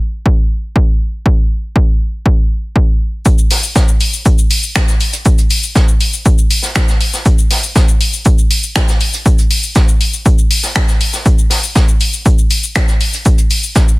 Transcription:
0.26 kick
0.76 kick
1.26 kick
1.76 kick
2.26 kick
2.76 kick
3.25 kick, shaker
3.38 shaker
3.51 snare, open hi-hat, shaker
3.63 shaker
3.76 kick, snare, shaker
3.88 shaker
4.00 open hi-hat, shaker
4.13 shaker
4.26 kick, shaker
4.38 shaker
4.50 open hi-hat, shaker
4.63 shaker
4.76 finger snap, kick, snare, shaker
4.88 snare, shaker
5.00 open hi-hat, shaker
5.13 closed hi-hat, shaker
5.25 kick, shaker
5.38 closed hi-hat, shaker
5.50 open hi-hat, shaker
5.63 shaker
5.75 kick, snare, shaker
5.88 shaker
6.00 open hi-hat, shaker
6.13 shaker
6.25 kick, shaker
6.38 shaker
6.50 open hi-hat, shaker
6.62 snare, shaker
6.75 finger snap, kick, snare, shaker
6.88 snare, shaker
7.01 open hi-hat, shaker
7.13 snare, shaker
7.25 kick, shaker
7.38 shaker
7.51 snare, open hi-hat, shaker
7.63 shaker
7.76 kick, snare, shaker
7.88 shaker
8.01 open hi-hat, shaker
8.13 shaker
8.25 kick, shaker
8.38 shaker
8.51 open hi-hat, shaker
8.63 shaker
8.76 finger snap, kick, snare, shaker
8.88 snare, shaker
9.00 open hi-hat, shaker
9.13 closed hi-hat, shaker
9.26 kick, shaker
9.38 closed hi-hat, shaker
9.51 open hi-hat, shaker
9.63 shaker
9.75 kick, snare, shaker
9.88 shaker
10.01 open hi-hat, shaker
10.13 shaker
10.26 kick, shaker
10.38 shaker
10.51 open hi-hat, shaker
10.63 snare, shaker
10.75 finger snap, kick, snare, shaker
10.88 snare, shaker
11.01 open hi-hat, shaker
11.13 snare, shaker
11.26 kick, shaker
11.38 shaker
11.50 snare, open hi-hat, shaker
11.63 shaker
11.75 kick, snare, shaker
11.88 shaker
12.00 open hi-hat, shaker
12.13 shaker
12.26 kick, shaker
12.38 shaker
12.50 open hi-hat, shaker
12.63 shaker
12.75 finger snap, kick, snare, shaker
12.88 snare, shaker
13.00 open hi-hat, shaker
13.13 closed hi-hat, shaker
13.25 kick, shaker
13.38 closed hi-hat, shaker
13.50 open hi-hat, shaker
13.63 shaker
13.75 kick, snare, shaker
13.88 shaker

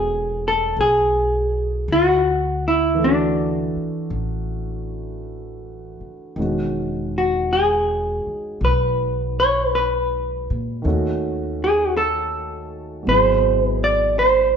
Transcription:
Already playing: E1 F#3 A3 B3 C#4 E4 F#4 G#4 B4
0.48 A4
0.77 B1
0.81 G#4
1.88 D2
1.92 F#4
2.68 E4
2.95 E3 A3
3.02 D4 F#4
3.76 muted upright bass stroke
4.10 A1
6.01 muted upright bass stroke
6.36 E1 D#3 G#3 C#4
6.41 F#4
7.18 F#4
7.53 G#4
8.26 muted upright bass stroke
8.61 B1 B4
9.40 C#5
9.75 B4
10.50 A#2
10.82 D#2 D#3 A3 C#4
10.88 F#4
11.64 G#4
11.97 A4
13.03 F#3
13.07 G#1 B2 E4 C5
13.13 G#4
13.65 B4
13.84 D5
14.19 C5

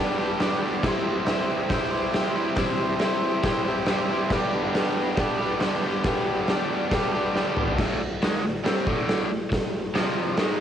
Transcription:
Already playing: G3 B3 D4 G4 B4
0.00 D4 G4
0.18 B3 D4 G4
0.23 G3
0.39 G2 D3 G3 B3 D4 G4 B4, snare, open hi-hat
0.62 B3 D4 G4
0.66 G3
0.83 C3 G3 C4 E4 G4 C5, kick, snare, crash
0.87 G4 C5
1.25 C4 E4 G4, snare, open hi-hat
1.30 C5
1.69 C4 E4 G4, kick, snare, open hi-hat
1.74 G4 C5
1.91 E4 G4 C5
1.95 C4
2.12 C3 G3 C4 E4 G4, snare, open hi-hat
2.17 C5
2.35 C4 E4 G4 C5
2.56 C3 G3 C4 E4 G4 C5, kick, snare, open hi-hat
2.60 G4 C5
2.99 C4 E4 G4, snare, open hi-hat
3.04 E4 G4 C5
3.43 C4 E4 G4, kick, snare, open hi-hat
3.47 C5
3.65 E4 G4 C5
3.70 C4
3.86 C3 G3 C4 E4 G4 D5, snare, open hi-hat
3.91 C5
4.08 E4 G4 C5
4.13 C4
4.29 G2 D3 G3 D4 G4 B4, kick, snare, crash
4.33 B3 D4 G4
4.72 G3 B3 D4 G4 B4, snare, open hi-hat
4.77 D4 G4
5.16 G3 B3 D4 G4, kick, snare, open hi-hat
5.20 G4 B4
5.38 B3 D4 G4
5.42 G3
5.60 G2 D3 G3 B3 D4 G4 B4, snare, open hi-hat
5.64 G4
5.83 B3 D4 G4
5.87 G3
6.03 G2 D3 G3 B3 D4 G4 B4, kick, snare, open hi-hat
6.08 G4
6.46 G3 B3 D4 G4, snare, open hi-hat
6.50 D4 G4 D5
6.90 G3 B3 D4 G4, kick, snare, open hi-hat
6.94 D4 G4 B4
7.13 B3 D4 G4
7.17 G3
7.33 G2 D3 G3 B3 D4 G4 B4, snare
7.56 B3 D4 G4, mid tom
7.61 G3
7.68 floor tom
7.77 D2 A2 D3, kick, snare, crash
8.01 muted overdriven electric guitar stroke
8.22 G#2 D#3 G#3, snare, open hi-hat
8.44 D2 A2
8.64 C3 G3 C4, snare, open hi-hat
8.87 D2 A2 D3, kick
9.09 snare, open hi-hat
9.29 D2 A2
9.50 muted overdriven electric guitar stroke, kick, snare, open hi-hat
9.94 F2 C3 F3, snare, open hi-hat
10.37 G#2 D#3 G#3, snare, open hi-hat

